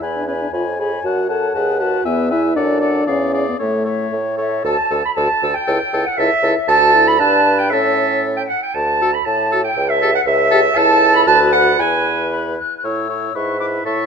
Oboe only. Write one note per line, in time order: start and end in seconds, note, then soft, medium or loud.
0.03 0.27 G#5 soft
0.28 0.53 G#5 soft
0.54 0.79 G#5 soft
0.80 1.05 G#5 soft
1.05 1.29 F#5 soft
1.29 1.54 F#5 soft
1.55 1.79 F#5 medium
1.80 2.04 F#5 medium
2.05 2.30 E5 medium
2.31 2.55 E5 medium
2.56 2.80 D5 medium
2.81 3.06 D5 medium
3.06 3.33 D5 medium
3.34 3.58 D5 medium
3.59 3.84 C#5 soft
3.85 4.37 C#5 soft
4.37 4.64 C#5 medium
4.65 4.77 A4 medium
4.90 5.02 A4 medium
5.17 5.28 A4 medium
5.43 5.55 A4 medium
5.67 5.79 A4 medium
5.94 6.05 A4 medium
6.19 6.30 A4 medium
6.43 6.55 A4 medium
6.69 7.16 A4 medium
7.20 7.74 B4 medium
7.73 8.50 A4 medium
9.01 9.10 A4 medium
9.52 9.61 A4 medium
10.02 10.11 A4 medium
10.51 10.60 A4 medium
10.76 11.29 A4 medium
11.27 11.78 B4 medium
11.79 12.57 B4 medium
12.84 13.09 C#5 soft
13.09 13.34 C#5 soft
13.35 13.59 B4 soft
13.60 13.84 B4 soft
13.85 14.06 A4 medium